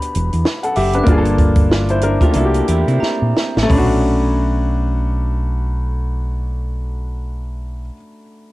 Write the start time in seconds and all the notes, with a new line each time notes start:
Already playing: B3 D4 F#4 G4 B5
0.02 closed hi-hat
0.15 E1, closed hi-hat
0.33 E2, closed hi-hat
0.45 snare
0.63 A4 F#5, closed hi-hat
0.76 F#1 G4 E5 D6, open hi-hat
0.93 D4 B4, closed hi-hat
0.99 F#6
1.03 G1 A#3 D4, kick, closed hi-hat
1.09 F4 G#4
1.18 A4
1.25 closed hi-hat
1.38 kick, closed hi-hat
1.55 kick, closed hi-hat
1.71 F4 D5, snare
1.89 E4 C5, closed hi-hat
2.01 D4 A#4, closed hi-hat
2.21 A3 F4 G4 A#4, kick, closed hi-hat
2.31 A#3 D4, closed hi-hat
2.35 C2 E4 F#4 A4
2.45 G4
2.54 closed hi-hat
2.68 E2 E4 G4, closed hi-hat
2.88 C3 C4 E4, closed hi-hat
3.00 A#5, muted fingered electric bass stroke, snare
3.22 A#2
3.37 snare
3.57 A1, snare
3.63 A3
3.68 B1 C#4 B5, kick, floor tom, open hi-hat
3.73 D4
3.78 F#4